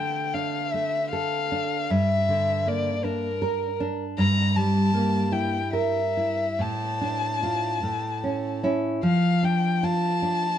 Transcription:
Already playing: D3 A3 G5
0.34 D4 F5
0.73 A3 E5
1.12 A4 F5
1.52 D4
1.90 G2 E5
2.29 D3
2.66 A#3 D5
3.04 D4 A#4
3.42 A#4
3.80 D4
4.18 G2 A#5
4.56 G3 A5
4.94 A#3
5.32 E4 G5
5.73 A#4 E5
6.17 E4
6.59 A2 A5
7.01 D4
7.42 D4 F4
7.83 A2
8.24 C#4
8.63 C#4 E4
9.03 F3 F5
9.43 D4 G5
9.83 F4 A5
10.22 D4

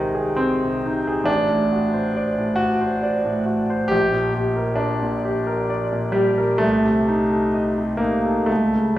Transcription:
Already playing: C2 C3 D#3 G#3 D#4 G#4 C5
0.15 G#4
0.36 C4 C5
0.64 C3
0.86 D#4
1.07 G#4
1.24 A1 D4
1.50 A2
1.73 F#4
1.93 C5
2.16 D5
2.38 A2
2.56 F#4
2.81 C5
3.03 D5
3.25 A2
3.46 F#4
3.70 C5
3.88 A#1 G4
4.12 A#2
4.34 G4
4.56 A#4
4.76 D4 D5
5.03 A#2
5.25 G4
5.47 A#4
5.70 D5
5.92 A#2
6.12 G3 G4
6.38 A#4
6.58 C2 A3
6.85 C3
7.08 D#4
7.31 A4
7.54 D#5
7.78 C3
7.97 A#3 D#4
8.25 A4
8.46 C#2 A3
8.74 C#3

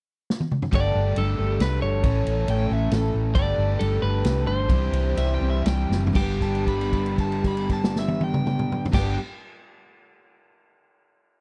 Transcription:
0.30 snare
0.40 high tom
0.52 mid tom
0.62 floor tom
0.73 G1 G2 D3 G3 A3 D4 G4 A4 D5, kick, ride
0.95 G1
1.16 G1 G3 D4 G4 A4, ride
1.38 G1 G3 D4 G4 A4
1.60 C2 G3 D4 G4 A4 B4, snare, ride
1.82 G1 C#5
2.03 A1 A2 E3 A3 C#4 E4 A4, kick, ride
2.26 A1, ride
2.47 A1 A3 C#4 E4 A4 G5, ride
2.70 A1 A3 C#4 E4 A4 E5
2.91 A1 A3 C#4 E4 A4, snare, ride
3.13 A1 A3 C#4 E4 A4
3.35 G1 G2 D3 G3 A3 D4 G4 A4 D5, kick, ride
3.58 G1
3.79 G1 G3 D4 G4 A4, ride
4.02 G1 B4
4.24 C2 G3 D4 G4 A4, snare, ride
4.46 G1 G3 D4 G4 A4 C5
4.69 C2 C3 E3 G3 C4 D4 E4 G4, kick, ride
4.92 C2, ride
5.15 C2 G3 C4 D4 G4 E5, ride
5.34 G5
5.40 C2 G3 C4 D4 G4
5.49 E5
5.66 C2 G3 C4 D4 G4 G5, snare, ride
5.90 F#1, snare
6.07 floor tom
6.13 G1 G2 D3 D4 G4, kick, crash
6.17 G3 B3 D4 G4
6.22 G4
6.41 A5, kick, crash
6.55 crash
6.67 B5, kick, crash
6.81 crash
6.93 kick, crash
7.06 crash
7.18 A5, kick, crash
7.32 crash
7.44 B5, kick, crash
7.57 crash
7.69 A5, kick, crash
7.84 snare
7.96 E5, snare
8.08 high tom
8.21 G5, high tom
8.34 mid tom
8.47 mid tom
8.59 mid tom
8.72 mid tom
8.85 floor tom
8.92 G1 G2 D3 G3 D4 G4 G5, kick, snare, crash
8.98 B3 D4 G4

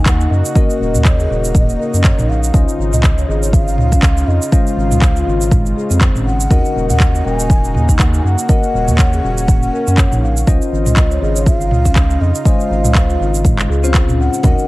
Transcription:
Already playing: D#2 C#3 A#3 D#4 F#4
0.06 F#5, kick, clap, shaker
0.20 D#4, shaker
0.31 F#2 D#5
0.45 shaker
0.55 A#3 C#4 F#4 A#4 D#5, kick, shaker
0.70 shaker
0.80 D#1
0.94 D#2, mid tom, shaker
1.05 C#5, kick, clap, shaker
1.19 G#4, shaker
1.30 D#1 F#4
1.44 shaker
1.55 A#3, kick, mid tom, shaker
1.69 shaker
1.79 A#4
1.93 F#2 C#4, shaker
2.04 C#5, kick, clap, shaker
2.18 A#1 D#4, mid tom, shaker
2.29 F5
2.44 shaker
2.54 C#2 C#4 F4 C5 D#5, kick, shaker
2.69 shaker
2.79 G#1
2.93 C#2 D#5, mid tom, shaker
3.04 kick, clap, shaker
3.18 C#5, shaker
3.28 G#1 G#4 D#5
3.42 C#5, shaker
3.53 F4 F5, kick, shaker
3.68 shaker
3.78 C#2, mid tom
3.92 C#4, kick, shaker
4.03 kick, clap, shaker
4.17 C#4, shaker
4.27 F2 D#5
4.42 shaker
4.52 G#3 C#4 F4 C5 D#5 F5, kick, shaker
4.67 shaker
4.77 G#1
4.91 C#2, mid tom, shaker
5.02 C5, kick, clap, shaker
5.16 F4, shaker
5.26 G#1 F4
5.41 shaker
5.51 G#3, kick, mid tom, shaker
5.66 shaker
5.76 G#4
5.90 F2 C4, shaker
6.01 C5, kick, clap, shaker
6.15 G#1 C#4, mid tom, shaker
6.26 F#5
6.40 shaker
6.50 D#2 A#3 C#4 D#4 F#4 A#4 D#5, kick, shaker
6.65 shaker
6.75 D#1
6.89 D#2 F#5, mid tom, shaker
7.00 kick, clap, shaker
7.14 D#5, shaker
7.25 D#1 A#4 G#5
7.39 D#5, shaker
7.50 F#4, kick, shaker
7.64 shaker
7.74 D#2, mid tom
7.89 D#4, kick, shaker
7.99 F#5, kick, clap, shaker
8.13 D#4, shaker
8.18 G#5
8.24 F#2 F#5
8.38 shaker
8.49 A#3 C#4 F#4 A#4 D#5, kick, shaker
8.63 shaker
8.74 D#1
8.88 D#2, mid tom, shaker
8.98 C#5, kick, clap, shaker
9.13 G#4, shaker
9.23 D#1 F#4
9.38 shaker
9.48 A#3, kick, mid tom, shaker
9.63 shaker
9.73 A#4
9.87 F#2 C#4, shaker
9.98 C#5, kick, clap, shaker
10.12 A#1 D#4, mid tom, shaker
10.22 F5
10.37 shaker
10.47 C#2 C#3 C#4 D#4 F4 C5 D#5, kick, shaker
10.62 shaker
10.72 G#1
10.86 C#2 D#5, mid tom, shaker
10.96 kick, clap, shaker
11.11 C#5, shaker
11.22 G#1 G#4 D#5
11.36 C#5, shaker
11.46 F4 F5, kick, shaker
11.61 shaker
11.71 C#2, mid tom
11.85 C#4, kick, shaker
11.96 kick, clap, shaker
12.10 C#4, shaker
12.21 F2 D#5
12.35 shaker
12.45 G#3 C#4 F4 C5 D#5 F5, kick, shaker
12.60 shaker
12.70 G#1
12.84 C#2, mid tom, shaker
12.95 C5, kick, clap, shaker
13.09 F4, shaker
13.20 G#1 F4
13.34 shaker
13.44 G#3, kick, mid tom, shaker
13.59 clap, shaker
13.69 C#2 G#4
13.83 C4 C#4 F4 C5 F5, shaker
13.94 C5, kick, clap, shaker
14.08 C#4, mid tom, shaker
14.20 F#5
14.34 shaker
14.43 D#2 A#3 C#4 D#4 F#4 A#4 D#5, kick, low bongo, muted conga, low conga, shaker
14.58 shaker

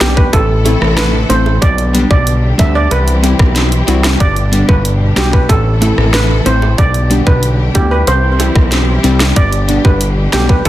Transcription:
Already playing: B2 D3 G3 D4 G4
0.00 B1 G3 B3 D4 G4, cross-stick, snare, closed hi-hat
0.17 B4, kick
0.33 A1 C3 E3 A3 E4 A4, kick, closed hi-hat, high bongo
0.65 A3 C4 E4 A4, closed hi-hat, high bongo
0.81 A1, cross-stick
0.97 B4, cross-stick, snare, closed hi-hat
1.29 A1 A3 C4 E4 A4 C5, closed hi-hat, low bongo
1.46 high bongo
1.62 B1 B2 D3 G3 D4 G4 D5, kick, closed hi-hat, high bongo
1.78 closed hi-hat
1.93 G3 B3 D4 G4, closed hi-hat
2.11 B1 D5, kick
2.27 closed hi-hat
2.58 D2 G3 B3 D4 G4 E5, kick, closed hi-hat
2.75 D5
2.91 C2 E3 C4 E4 B4, closed hi-hat, high bongo
3.08 closed hi-hat
3.23 G3 C4 E4 G4, closed hi-hat, high bongo
3.39 B1, kick, cross-stick
3.56 snare, closed hi-hat
3.72 closed hi-hat
3.87 C2 G3 C4 E4 F#4, closed hi-hat, low bongo
4.04 cross-stick, snare, high bongo
4.20 G1 B2 D3 G3 D4 D5, kick, closed hi-hat, high bongo
4.36 closed hi-hat
4.52 G3 B3 D4 G4, closed hi-hat
4.69 G1 B4, kick
4.85 closed hi-hat
5.16 B1 G3 B3 D4 F#4 G4, cross-stick, snare, closed hi-hat
5.33 B4, kick
5.49 A1 C3 E3 A3 E4 A4, kick, closed hi-hat, high bongo
5.81 A3 C4 E4 A4, closed hi-hat, high bongo
5.98 A1, cross-stick
6.13 B4, cross-stick, snare, closed hi-hat
6.45 A1 A3 C4 E4 C5, closed hi-hat, low bongo
6.62 high bongo
6.78 B1 B2 D3 G3 D4 G4 D5, kick, closed hi-hat, high bongo
6.94 closed hi-hat
7.10 G3 B3 D4 G4, closed hi-hat
7.27 B1 B4, kick
7.43 closed hi-hat
7.74 D2 G3 B3 D4 E4 G4, kick, closed hi-hat
7.91 B4
8.07 C2 E3 C4 E4 G4 C5, closed hi-hat, high bongo
8.39 G3 C4 E4 G4, closed hi-hat, high bongo
8.56 B1, kick, cross-stick
8.72 snare, closed hi-hat
9.03 C2 G3 C4 E4 G4, closed hi-hat, low bongo
9.20 cross-stick, snare, high bongo
9.36 G1 B2 D3 D4 D5, kick, closed hi-hat, high bongo
9.52 closed hi-hat
9.68 G3 B3 D4 G4, closed hi-hat
9.85 G1 B4, kick
10.01 closed hi-hat
10.33 B1 G3 B3 D4 G4 A4, cross-stick, snare, closed hi-hat
10.49 B4, kick
10.65 A1 A4, kick, closed hi-hat, high bongo

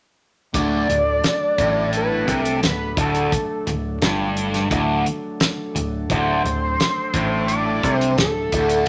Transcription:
0.54 D1 D2 F#3 A3 D4 A4 D5, kick, closed hi-hat
0.89 D1 D2, closed hi-hat
1.24 snare, closed hi-hat
1.58 A1 A2, kick, closed hi-hat
1.93 closed hi-hat
1.97 B4
2.27 C2 C3, kick, closed hi-hat
2.45 A4, closed hi-hat
2.62 D1 D2 B4, snare, closed hi-hat
2.97 D1 D2 A4, kick, closed hi-hat
3.15 closed hi-hat
3.32 muted distorted electric guitar stroke, kick, closed hi-hat
3.67 D1 D2, closed hi-hat
4.02 G1 G2, snare, closed hi-hat
4.37 closed hi-hat
4.54 snare, closed hi-hat
4.70 D1 D2, kick, closed hi-hat
5.06 closed hi-hat
5.40 snare, closed hi-hat
5.75 D1 D2, closed hi-hat
6.10 D1 D2 C5, kick, closed hi-hat
6.44 D1 D2, closed hi-hat
6.80 snare, closed hi-hat
7.14 A1 A2, kick, closed hi-hat
7.47 D5, closed hi-hat
7.83 C2 C3, kick, closed hi-hat
7.96 C5
8.01 closed hi-hat
8.17 D1 D2 A4, snare, closed hi-hat
8.52 D1 D2, kick, closed hi-hat
8.69 closed hi-hat

